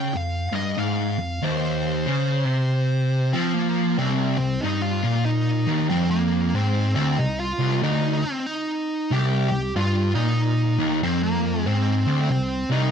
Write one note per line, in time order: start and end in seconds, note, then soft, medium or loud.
0.00 0.12 C#3 loud
0.00 0.15 G5 medium
0.14 0.45 F2 medium
0.14 0.55 F5 loud
0.53 0.76 G2 medium
0.53 0.79 D#5 loud
0.77 1.16 G#2 loud
0.77 1.45 F5 loud
1.19 1.37 F2 medium
1.42 2.05 D#2 loud
1.42 3.32 C5 medium
2.06 2.46 C#3 loud
2.46 3.33 C3 loud
3.33 3.97 F3 loud
3.33 3.54 C4 medium
3.54 3.98 A#3 medium
3.98 4.37 C2 loud
3.98 4.36 C4 loud
4.37 4.58 C2 medium
4.37 4.62 C4 medium
4.61 5.01 G2 loud
4.61 4.82 D#4 medium
4.82 5.25 F4 loud
5.04 5.66 A#2 loud
5.25 5.86 D#4 loud
5.67 5.90 D#2 loud
5.90 6.54 F2 loud
5.90 6.10 C4 medium
6.11 6.55 A#3 medium
6.55 6.93 G#2 loud
6.55 6.94 C4 loud
6.95 7.18 D2 loud
6.95 7.19 C4 medium
7.19 7.50 C2 medium
7.19 7.37 D#4 loud
7.40 7.80 F4 loud
7.59 7.82 C2 loud
7.83 8.21 D2 loud
7.83 8.24 D#4 loud
8.24 8.46 C4 medium
8.46 9.12 D#4 loud
9.11 9.49 C2 loud
9.11 9.48 G4 loud
9.49 9.70 C2 medium
9.49 9.72 G4 loud
9.76 10.14 G2 loud
9.76 10.12 F4 loud
10.15 10.77 A#2 loud
10.15 10.99 D#4 loud
10.78 11.02 D#2 loud
11.03 11.66 F2 loud
11.03 11.23 C4 loud
11.23 11.67 A#3 loud
11.66 12.05 G#2 loud
11.66 12.30 C4 loud
12.07 12.30 D2 loud
12.31 12.62 C2 medium
12.31 12.68 C4 medium
12.70 12.91 C2 loud
12.70 12.91 D#4 medium